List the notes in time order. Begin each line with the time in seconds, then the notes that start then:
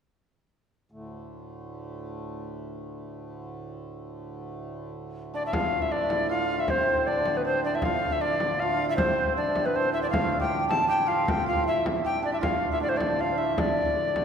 0.91 D2 A2
5.34 D4 D5
5.46 E5
5.52 D2 A2 F4 F5, frame drum
5.72 frame drum
5.82 E4 E5
5.91 D4 D5, frame drum
6.10 E4, frame drum
6.29 F4 F5
6.50 frame drum
6.58 E4 E5
6.68 C4 C5, frame drum
6.87 C4, frame drum
7.07 D4 D5, frame drum
7.26 frame drum
7.35 B3 B4
7.45 C4 C5
7.64 D4 D5, frame drum
7.75 E4 E5
7.82 F4 F5, frame drum
8.02 frame drum
8.12 E4 E5
8.21 D4 D5, frame drum
8.40 frame drum
8.60 F4 F5
8.80 frame drum
8.89 E4 E5
8.97 C4 C5, frame drum
9.18 C4
9.37 D4 D5
9.56 frame drum
9.65 B3 B4
9.75 C4 C5, frame drum
9.93 E4 E5, frame drum
10.03 D4 D5
10.10 D2 A2 F4 F5, frame drum
10.33 frame drum
10.40 G4 G5
10.51 frame drum
10.69 A4 A5, frame drum
10.83 A4
10.87 G4 G5
11.06 F4 F5, frame drum
11.25 G4 G5, frame drum
11.46 F4 F5, frame drum
11.64 E4 E5
11.68 frame drum
11.86 frame drum
12.05 G4 G5
12.23 D4 D5, frame drum
12.32 E4 E5
12.41 F4 F5, frame drum
12.62 frame drum
12.72 E4 E5
12.80 D4 D5, frame drum
12.89 C5
12.96 D4 D5
13.01 frame drum
13.19 F4 F5
13.38 E4 E5, frame drum
13.58 D4 D5, frame drum
13.78 frame drum
13.97 frame drum
14.16 frame drum